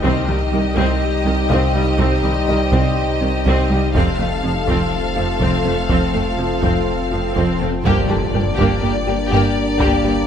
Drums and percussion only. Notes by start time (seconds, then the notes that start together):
0.04 taiko
0.77 taiko
1.50 taiko
1.99 taiko
2.72 taiko
3.46 taiko
3.95 taiko
4.68 taiko
5.41 taiko
5.89 taiko
6.63 taiko
7.36 taiko
7.85 taiko
8.34 taiko low
8.58 taiko
9.80 taiko